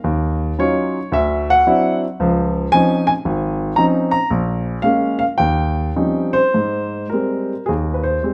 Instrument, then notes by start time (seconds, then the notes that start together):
grand piano
0.04 D#2
0.59 F#3 C#4 D#4 F4 C#5
1.12 D2 E5
1.50 F#5
1.67 F#3 C4 D4 E4
2.20 C#2 F3
2.72 F3 C4 C#4 D#4 G#5
3.07 G#5
3.25 G#1
3.76 F3 C4 C#4 D#4 A#5
4.11 A#5
4.30 A#1
4.82 G#3 A#3 C#4 F5
5.19 F5
5.38 D#2 G5
5.96 F3 G3 C4 C#4 D#4
6.33 C5
6.54 G#2
7.10 G3 G#3 C4 A#4
7.66 D#2 G#4
7.94 B4
8.03 C5
8.23 G3 G#3 C4